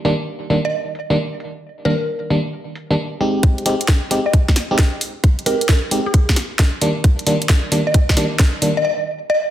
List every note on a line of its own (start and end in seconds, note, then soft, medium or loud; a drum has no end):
0.05 0.14 D#3 loud
0.05 0.14 G3 medium
0.05 0.14 A#3 medium
0.05 0.14 D4 loud
0.05 open hi-hat loud
0.50 0.59 D#3 medium
0.50 0.59 G3 medium
0.50 0.59 A#3 medium
0.50 0.59 D4 medium
0.50 open hi-hat medium
0.65 0.79 D#5 medium
0.95 open hi-hat loud
1.10 1.17 D#3 medium
1.10 1.17 G3 medium
1.10 1.17 A#3 medium
1.10 1.17 D4 loud
1.40 open hi-hat medium
1.85 1.94 D#3 medium
1.85 1.94 G3 medium
1.85 1.94 A#3 medium
1.85 1.94 D4 medium
1.85 2.06 A#4 medium
1.85 open hi-hat medium
2.30 2.39 D#3 medium
2.30 2.39 G3 medium
2.30 2.39 A#3 medium
2.30 2.39 D4 medium
2.30 open hi-hat medium
2.75 open hi-hat loud
2.90 2.95 D#3 medium
2.90 2.95 G3 medium
2.90 2.95 A#3 medium
2.90 2.95 D4 loud
3.21 3.64 G#3 medium
3.21 3.64 C4 medium
3.21 3.64 D#4 medium
3.21 3.64 G4 medium
3.21 open hi-hat medium
3.43 kick loud
3.43 closed hi-hat medium
3.58 closed hi-hat soft
3.66 3.74 G#3 loud
3.66 3.74 C4 medium
3.66 3.74 D#4 medium
3.66 3.74 G4 loud
3.66 open hi-hat loud
3.81 closed hi-hat medium
3.88 kick loud
3.88 snare loud
3.88 closed hi-hat medium
4.11 4.20 G#3 medium
4.11 4.20 C4 medium
4.11 4.20 D#4 medium
4.11 4.20 G4 loud
4.11 snare soft
4.11 open hi-hat medium
4.26 4.40 D#5 medium
4.33 kick loud
4.33 closed hi-hat medium
4.48 kick medium
4.48 snare medium
4.56 snare medium
4.56 open hi-hat loud
4.71 4.78 G#3 medium
4.71 4.78 C4 medium
4.71 4.78 D#4 medium
4.71 4.78 G4 loud
4.79 kick loud
4.79 snare loud
4.79 closed hi-hat medium
5.01 open hi-hat medium
5.24 kick loud
5.24 closed hi-hat medium
5.39 closed hi-hat soft
5.46 5.55 G#3 medium
5.46 5.55 C4 medium
5.46 5.55 D#4 medium
5.46 5.55 G4 medium
5.46 5.67 A#4 medium
5.46 open hi-hat loud
5.61 closed hi-hat medium
5.69 5.87 A#4 medium
5.69 kick loud
5.69 snare loud
5.69 closed hi-hat medium
5.91 6.00 G#3 medium
5.91 6.00 C4 medium
5.91 6.00 D#4 medium
5.91 6.00 G4 medium
5.91 open hi-hat medium
6.06 6.36 G#4 medium
6.14 kick loud
6.14 closed hi-hat medium
6.29 kick medium
6.29 snare medium
6.36 snare medium
6.36 open hi-hat loud
6.59 kick loud
6.59 snare loud
6.59 closed hi-hat medium
6.82 6.90 D#3 medium
6.82 6.90 G3 medium
6.82 6.90 A#3 medium
6.82 6.90 D4 loud
6.82 open hi-hat medium
7.04 kick loud
7.04 closed hi-hat medium
7.19 closed hi-hat soft
7.27 7.35 D#3 medium
7.27 7.35 G3 medium
7.27 7.35 A#3 medium
7.27 7.35 D4 loud
7.27 open hi-hat loud
7.42 closed hi-hat medium
7.49 kick loud
7.49 snare loud
7.49 closed hi-hat medium
7.72 7.81 D#3 medium
7.72 7.81 G3 medium
7.72 7.81 A#3 medium
7.72 7.81 D4 medium
7.72 snare soft
7.72 open hi-hat medium
7.87 7.93 D#5 medium
7.94 kick loud
7.94 closed hi-hat medium
8.09 kick medium
8.09 snare medium
8.17 8.26 D#3 loud
8.17 8.26 G3 medium
8.17 8.26 A#3 medium
8.17 8.26 D4 loud
8.17 snare medium
8.17 open hi-hat loud
8.39 kick loud
8.39 snare loud
8.39 closed hi-hat medium
8.62 8.71 D#3 medium
8.62 8.71 G3 medium
8.62 8.71 A#3 medium
8.62 8.71 D4 medium
8.62 open hi-hat medium
8.77 8.83 D#5 medium
8.85 9.03 D#5 medium
9.30 9.48 D#5 medium